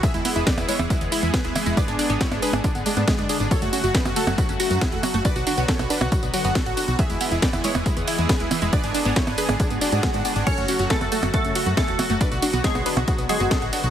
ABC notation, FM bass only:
X:1
M:4/4
L:1/16
Q:1/4=138
K:F#m
V:1 name="FM bass" clef=bass
z E,,, z E,,, z E,,, z E,,, z E,,, z E,, z D,,, z E,,, | z G,,, z G,,, z G,,, z G,,, z G,,, z G,, z F,,, z G,,, | z F,,, z F,,, z F,,, z F,,, z F,,, z F,, z E,,, z F,,, | z B,,, z B,,, z B,,, z B,,, z B,,, z F,,, z A,,, z B,,, |
z E,,, z E,,, z E,,, z E,,, z E,,, z E,, z D,,, z E,,, | z G,,, z G,,, z G,,, z G,,, z G,,, z G,, z G,, z G,,, | z F,,, z F,,, z F,,, z F,,, z F,,, z F,, z E,,, z F,,, | z B,,, z B,,, z B,,, z B,,, z B,,, z F,,, z A,,, z B,,, |]